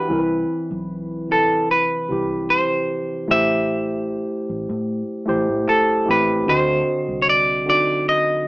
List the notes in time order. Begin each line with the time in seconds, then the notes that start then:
Already playing: E3 D4 F#4 G4 B4 E5 F#5 G5
0.09 C2 E3 C4 E4 A#4
0.19 B4
0.71 B1
1.28 C3 C4 E4 A4 B4
1.71 B4
2.08 C2 C3 C4 E4 G4
2.50 C5
3.28 A1 A3 E4 G4 C5 E5
4.49 A1
4.69 A2
5.26 A1 A3 E4 G4 C5
5.49 A2
5.69 A4
6.06 A1 A3 C4 E4 G4
6.11 B4
6.46 D2 D3 C4 F#4 C5 D#5
7.08 C2
7.22 C#5
7.29 D5
7.66 D3 C4 D#4 F#4 D5
8.09 D#5